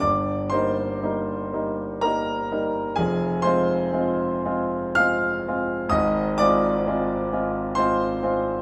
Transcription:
<<
  \new Staff \with { instrumentName = "Grand piano" } { \time 3/4 \key f \dorian \tempo 4 = 63 <d'' d'''>8 <c'' c'''>4. <bes' bes''>4 | <aes' aes''>8 <c'' c'''>4. <f'' f'''>4 | <ees'' ees'''>8 <d'' d'''>4. <c'' c'''>4 | }
  \new Staff \with { instrumentName = "Grand piano" } { \time 3/4 \key f \dorian <g,, g,>8 <g bes ees'>8 <g bes ees'>8 <g bes ees'>8 <g bes ees'>8 <g bes ees'>8 | <f,, f,>8 <aes c' f'>8 <aes c' f'>8 <aes c' f'>8 <aes c' f'>8 <aes c' f'>8 | <aes,, aes,>8 <aes c' f'>8 <aes c' f'>8 <aes c' f'>8 <aes c' f'>8 <aes c' f'>8 | }
>>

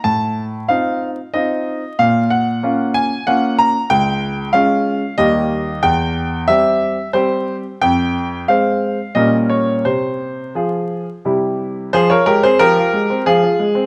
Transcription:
\new Staff \with { instrumentName = "Grand piano" } { \time 3/4 \key bes \minor \tempo 4 = 92 << { a''4 f''4 ees''4 | f''8 ges''4 aes''8 ges''8 bes''8 | \key f \minor g''4 f''4 ees''4 | g''4 e''4 c''4 |
g''4 f''4 ees''8 des''8 | c''2 r4 | <aes' c''>16 <bes' des''>16 <g' bes'>16 <aes' c''>16 <g' bes'>4 <f' aes'>4 | } \\ { a,4 <c' ees' f'>4 <c' ees' f'>4 | bes,4 <bes des' f'>4 <bes des' f'>4 | des,4 <aes des' f'>4 <ees, g bes g'>4 | e,4 <g c' g'>4 <g c' g'>4 |
f,4 <aes c' c''>4 <bes, g des' bes'>4 | c4 <f f' aes'>4 <c g e' g'>4 | f16 f'16 aes16 c'16 f16 f'16 aes16 c'16 f16 f'16 aes16 c'16 | } >> }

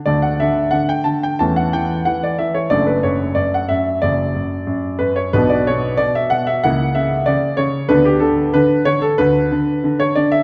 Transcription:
<<
  \new Staff \with { instrumentName = "Grand piano" } { \time 4/4 \key d \major \tempo 4 = 92 << { d''16 fis''16 e''8 fis''16 g''16 a''16 g''16 a''16 fis''16 g''8 fis''16 d''16 e''16 cis''16 | d''16 b'16 cis''8 d''16 fis''16 e''8 d''4. b'16 cis''16 | b'16 d''16 cis''8 d''16 e''16 fis''16 e''16 fis''8 e''8 d''8 cis''8 | b'16 g'16 a'8 b'8 cis''16 a'16 b'4~ b'16 cis''16 d''16 e''16 | } \\ { <a d'>2 <a cis'>2 | <a d'>1 | <b d'>2 <ais e'>2 | <b d'>1 | } >> }
  \new Staff \with { instrumentName = "Grand piano" } { \clef bass \time 4/4 \key d \major <d, d>8 d8 d8 d8 <e, e>8 e8 e8 e8 | <fis,, fis,>8 fis,8 fis,8 fis,8 <fis,, fis,>8 fis,8 fis,8 fis,8 | <b,, b,>8 b,8 b,8 b,8 <cis, cis>8 cis8 cis8 cis8 | <d, d>8 d8 d8 d8 <d, d>8 d8 d8 d8 | }
>>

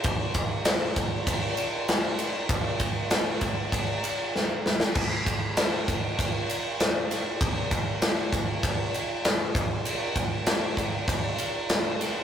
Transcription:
\new DrumStaff \with { instrumentName = "Drums" } \drummode { \time 4/4 \tempo 4 = 98 <bd cymr>8 <bd cymr>8 <cymr sn>8 <bd cymr>8 <bd cymr>8 cymr8 <cymr sn>8 cymr8 | <bd cymr>8 <bd cymr>8 <cymr sn>8 <bd cymr>8 <bd cymr>8 cymr8 sn8 sn16 sn16 | <cymc bd>8 <bd cymr>8 <cymr sn>8 <bd cymr>8 <bd cymr>8 cymr8 <cymr sn>8 <cymr sn>8 | <bd cymr>8 <bd cymr>8 <cymr sn>8 <bd cymr>8 <bd cymr>8 cymr8 <cymr sn>8 <bd cymr>8 |
cymr8 <bd cymr>8 <cymr sn>8 <bd cymr>8 <bd cymr>8 cymr8 <cymr sn>8 <cymr sn>8 | }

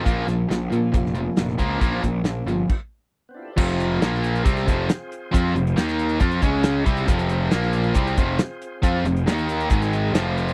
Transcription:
<<
  \new Staff \with { instrumentName = "Tonewheel organ" } { \time 4/4 \key f \minor \tempo 4 = 137 << { r1 | r1 | <b c' d' e' f' g' a' b' c'' d'' e''>8 r2. r8 | r1 |
r1 | r1 | } \\ { r1 | r1 | <c' f' aes' c''>4 <bes f' bes' f''>4 <c' f' aes' c''>2~ | <c' f' aes' c''>4 <bes ees' bes' ees''>4 r8 <aes des' aes' des''>4 <c' f' aes' c''>8~ |
<c' f' aes' c''>4 <bes f' bes' f''>4 <c' f' aes' c''>2~ | <c' f' aes' c''>4 <bes ees' bes' ees''>4 <aes ees' aes' ees''>4 <c' f' aes' c''>4 | } >> }
  \new Staff \with { instrumentName = "Steel-string acoustic guitar" } { \time 4/4 \key f \minor <bes, f bes des' f'>8 <bes des' f'>8 <f bes des' f'>8 <bes des' f'>8 <bes, f bes des' f'>8 <bes des' f'>8 <f bes des' f'>8 <bes f'>8 | <bes, f bes des' f'>8 <bes des' f'>8 <f bes des' f'>8 <bes des' f'>8 r2 | r1 | r1 |
r1 | r1 | }
  \new Staff \with { instrumentName = "Distorted electric guitar" } { \clef bass \time 4/4 \key f \minor <bes, f bes>8 <bes, f>8 <bes, f>8 <bes, f>8 <bes, f>8 <bes, f>8 <bes, f>8 <bes, f bes>8 | <bes, f bes>8 <bes, f>8 <bes, f>8 <bes, f>8 r2 | <f, c f>4 <bes, f bes>4 <c g c'>8 <f, c f>8 r4 | <f c' f'>8 <f, c>8 <ees bes ees'>4 <f c' f'>8 <des aes des'>4 <c g c'>8 |
<f, c f>4 <bes, f bes>4 <c g c'>8 <f, c f>8 r4 | <f c' f'>8 <f, c>8 <ees bes ees'>4 <aes, ees aes>4 <f, c f>4 | }
  \new Staff \with { instrumentName = "Overdriven electric guitar" } { \clef bass \time 4/4 \key f \minor <bes, f bes>8 <bes, f>8 <bes, f>8 <bes, f>8 <bes, f>8 <bes, f>8 <bes, f>8 <bes, f bes>8 | <bes, f bes>8 <bes, f>8 <bes, f>8 <bes, f>8 r2 | <f, c f>4 <bes, f bes>4 <c g c'>8 <f, c f>8 r4 | <f c' f'>8 <f, c>8 <ees bes ees'>4 <f c' f'>8 <des aes des'>4 <c g c'>8 |
<f, c f>4 <bes, f bes>4 <c g c'>8 <f, c f>8 r4 | <f c' f'>8 <f, c>8 <ees bes ees'>4 <aes, ees aes>4 <f, c f>4 | }
  \new Staff \with { instrumentName = "Picked electric bass" } { \clef bass \time 4/4 \key f \minor bes,,8 bes,,8 bes,,8 bes,8 f,,4 f,,8 des,8 | bes,,8 bes,,8 bes,,8 g,,8 r2 | f,,4 bes,,4 c,8 f,,8 r4 | f,8 f,,8 ees,4 f,8 des,4 c,8 |
f,,4 bes,,4 c,8 f,,8 r4 | f,8 f,,8 ees,4 aes,,4 f,,4 | }
  \new DrumStaff \with { instrumentName = "Drums" } \drummode { \time 4/4 <hh bd>8 <hh sn>8 <hh sn>8 hh8 <hh bd>16 sn16 hh8 <hh sn>16 sn16 <hh bd>8 | <hh bd>8 <hh bd>8 <hh sn>8 hh8 <cymc bd>4 r4 | <cymc bd>16 hh16 hh8 <hh sn>16 sn16 hh16 hh16 <hh bd>16 <hh sn>16 <hh bd>8 <hh sn>8 hh8 | <hh bd>8 hh16 hh16 <hh sn>16 <hh sn>16 hh16 hh16 <hh bd>16 hh16 <hh bd>8 <hh sn>8 <hh bd>16 hh16 |
<hh bd>16 hh16 hh8 <hh sn>16 sn16 hh16 hh16 <hh bd>16 hh16 <hh bd>8 <hh sn>8 hh8 | <hh bd>8 hh16 hh16 <hh sn>16 hh16 hh16 hh16 <hh bd>16 <hh sn>16 hh8 <hh sn>8 hh16 hh16 | }
>>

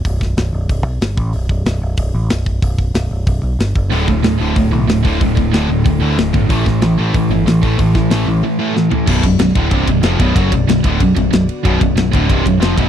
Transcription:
<<
  \new Staff \with { instrumentName = "Ambient pad" } { \time 4/4 \key b \minor \tempo 4 = 186 << { r1 | r1 | r1 | r1 |
r1 | r1 | r1 | d''1~ |
d''1 | cis''1 | } \\ { r1 | r1 | r1 | r1 |
r1 | r1 | r1 | <d b fis'>1~ |
<d b fis'>1~ | <d b fis'>1 | } >> }
  \new Staff \with { instrumentName = "Distorted electric guitar" } { \clef bass \time 4/4 \key b \minor r1 | r1 | r1 | <d, a, d>8 <d, a,>8 <d, a,>8 <d, a, d>8 <d, a,>8 <d, a,>8 <d, a,>8 <d, a, d>8 |
<d, a,>8 <d, a,>8 <d, a, d>8 <d, a,>8 <d, a,>8 <d, a, d>8 <d, a,>8 <d, a,>8 | <a, e a>8 <a, e>8 <a, e>8 <a, e a>8 <a, e>8 <a, e>8 <a, e>8 <a, e a>8 | <a, e>8 <a, e>8 <a, e a>8 <a, e>8 <a, e>8 <a, e a>8 <a, e>8 <a, e>8 | <b,, fis, b,>8 <b,, fis,>8 <b,, fis,>8 <d, a, d>8 <c, g, c>8 <b,, fis,>8 <eis, c eis>8 <b,, fis, b,>8 |
<fis, cis fis>8 <b,, fis,>8 <b,, fis,>8 <d, a, d>8 <b,, fis,>8 <b,, fis,>8 <b,, fis,>8 r8 | <b,, fis, b,>8 <b,, fis,>8 <b,, fis,>8 <d, a, d>8 <c, g, c>8 <b,, fis,>8 <eis, c eis>8 <b,, fis, b,>8 | }
  \new Staff \with { instrumentName = "Distorted electric guitar" } { \clef bass \time 4/4 \key b \minor r1 | r1 | r1 | <d, a, d>8 <d, a,>8 <d, a,>8 <d, a, d>8 <d, a,>8 <d, a,>8 <d, a,>8 <d, a, d>8 |
<d, a,>8 <d, a,>8 <d, a, d>8 <d, a,>8 <d, a,>8 <d, a, d>8 <d, a,>8 <d, a,>8 | <a, e a>8 <a, e>8 <a, e>8 <a, e a>8 <a, e>8 <a, e>8 <a, e>8 <a, e a>8 | <a, e>8 <a, e>8 <a, e a>8 <a, e>8 <a, e>8 <a, e a>8 <a, e>8 <a, e>8 | <b,, fis, b,>8 <b,, fis,>8 <b,, fis,>8 <d, a, d>8 <c, g, c>8 <b,, fis,>8 <eis, c eis>8 <b,, fis, b,>8 |
<fis, cis fis>8 <b,, fis,>8 <b,, fis,>8 <d, a, d>8 <b,, fis,>8 <b,, fis,>8 <b,, fis,>8 r8 | <b,, fis, b,>8 <b,, fis,>8 <b,, fis,>8 <d, a, d>8 <c, g, c>8 <b,, fis,>8 <eis, c eis>8 <b,, fis, b,>8 | }
  \new Staff \with { instrumentName = "Overdriven electric guitar" } { \clef bass \time 4/4 \key b \minor r1 | r1 | r1 | <d, a, d>2.~ <d, a, d>8 <d, a, d>8 |
<d, a, d>2.~ <d, a, d>8 <d, a, d>8 | <a, e a>2.~ <a, e a>8 <a, e a>8 | <a, e a>2.~ <a, e a>8 <a, e a>8 | <b,, fis, b,>8 <b,, fis,>8 <b,, fis,>8 <d, a, d>8 <c, g, c>8 <b,, fis,>8 <eis, c eis>8 <b,, fis, b,>8 |
<fis, cis fis>8 <b,, fis,>8 <b,, fis,>8 <d, a, d>8 <b,, fis,>8 <b,, fis,>8 <b,, fis,>8 r8 | <b,, fis, b,>8 <b,, fis,>8 <b,, fis,>8 <d, a, d>8 <c, g, c>8 <b,, fis,>8 <eis, c eis>8 <b,, fis, b,>8 | }
  \new Staff \with { instrumentName = "Picked electric bass" } { \clef bass \time 4/4 \key b \minor b,,,4 b,,,8 b,,,8 b,,,8 b,,8 g,,8 a,,8 | b,,,8 b,,,8 b,,,8 b,,,8 b,,,8 a,,8 b,,,4 | b,,,4 b,,,8 b,,,8 b,,,8 b,,8 g,,8 fis,,8 | d,,8 d,,8 d,,8 d,,8 d,,8 b,,8 d,,4 |
d,,4 d,,8 d,,8 d,,8 d,8 d,,8 g,,8 | a,,8 a,,8 a,,8 a,,8 a,,8 g,,8 a,,4 | a,,4 a,,8 a,,8 r2 | b,,,8 b,,,8 b,,,8 d,,8 c,,8 b,,,8 eis,,8 b,,,8 |
fis,,8 b,,,8 b,,,8 d,,8 b,,,8 b,,,8 b,,,8 r8 | b,,,8 b,,,8 b,,,8 d,,8 c,,8 b,,,8 eis,,8 b,,,8 | }
  \new DrumStaff \with { instrumentName = "Drums" } \drummode { \time 4/4 <hho bd>8 <bd sn>8 <hho sn>4 <hho bd>4 <hho sn>8 bd8 | hho8 bd8 <hho sn>4 <hho bd>4 <hho sn>8 bd8 | <hho bd>8 bd8 <hho sn>4 <hho bd>4 <hho sn>8 bd8 | hho8 bd8 <hho sn>4 <hho bd>4 <hho sn>8 bd8 |
<hho bd>8 bd8 <hho sn>4 <hho bd>4 <hho sn>8 bd8 | <hho bd>8 <bd sn>8 <hho sn>4 <hho bd>4 <hho sn>8 bd8 | <hho bd>8 <bd sn>8 <hho sn>4 r4 sn8 tomfh8 | <cymc bd>8 <bd cymr>8 <cymr sn>16 sn16 <bd cymr>8 <bd cymr>8 <bd cymr>8 <cymr sn>8 <bd cymr>8 |
<bd cymr>8 <bd cymr>8 <cymr sn>16 sn16 <bd cymr>8 <bd cymr>8 <bd cymr>8 <cymr sn>8 cymr8 | <bd cymr>8 <bd cymr>8 <cymr sn>8 <bd cymr>8 <bd cymr>8 <bd cymr>8 <cymr sn>8 <bd cymr>8 | }
>>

